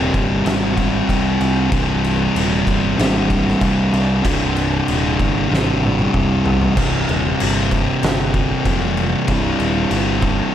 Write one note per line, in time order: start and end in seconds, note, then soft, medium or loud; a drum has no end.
0.00 0.44 C2 loud
0.00 0.44 G2 medium
0.00 0.47 C3 medium
0.14 0.42 G1 medium
0.14 kick medium
0.14 crash medium
0.44 1.01 G#1 loud
0.44 1.70 C2 medium
0.44 1.70 G2 medium
0.44 1.72 C3 medium
0.44 snare loud
0.44 crash medium
0.77 kick medium
0.77 crash medium
1.09 1.37 C2 medium
1.09 kick medium
1.09 crash medium
1.41 1.68 C2 medium
1.41 crash medium
1.70 2.27 C1 loud
1.70 2.97 C2 loud
1.70 2.96 G2 medium
1.70 2.99 C3 medium
1.70 kick loud
1.70 crash medium
2.04 crash medium
2.35 2.63 D#1 medium
2.35 crash loud
2.67 2.94 G1 medium
2.67 kick medium
2.67 crash medium
2.97 3.54 G#1 loud
2.97 4.23 C2 medium
2.97 4.23 G2 medium
2.97 4.26 C3 medium
2.97 snare loud
2.97 crash loud
3.30 kick medium
3.30 crash medium
3.48 snare soft
3.61 3.89 C2 loud
3.61 kick medium
3.61 crash medium
3.93 4.20 C2 loud
3.93 crash medium
4.23 4.80 C1 loud
4.23 5.48 C2 medium
4.23 5.49 G2 loud
4.23 5.50 C3 medium
4.23 kick loud
4.23 crash loud
4.56 crash medium
4.88 5.16 D#1 medium
4.88 crash loud
5.19 5.47 G1 medium
5.19 kick medium
5.19 crash medium
5.49 6.06 G#1 medium
5.49 6.74 C2 medium
5.49 6.75 G2 medium
5.49 6.76 C3 medium
5.54 snare medium
5.83 high tom medium
5.99 high tom medium
6.14 6.41 C2 medium
6.14 kick medium
6.14 mid tom medium
6.46 6.73 C2 medium
6.46 floor tom loud
6.62 floor tom loud
6.75 7.01 C1 loud
6.75 9.27 C2 loud
6.75 9.27 G2 loud
6.75 9.30 C3 loud
6.75 kick loud
6.75 crash loud
6.75 crash medium
7.09 7.33 D#1 medium
7.09 crash medium
7.40 7.89 G1 medium
7.40 crash loud
7.71 kick medium
7.71 crash medium
8.03 8.52 G1 loud
8.03 snare loud
8.03 crash loud
8.34 kick medium
8.34 crash medium
8.65 9.14 F1 loud
8.65 kick medium
8.65 crash medium
8.97 crash medium
9.28 9.53 C1 loud
9.28 10.55 C2 medium
9.28 10.55 G2 loud
9.28 10.55 C3 loud
9.28 kick loud
9.28 crash medium
9.60 9.84 D#1 loud
9.60 crash medium
9.91 10.40 G1 medium
9.91 crash medium
10.22 kick medium
10.22 crash medium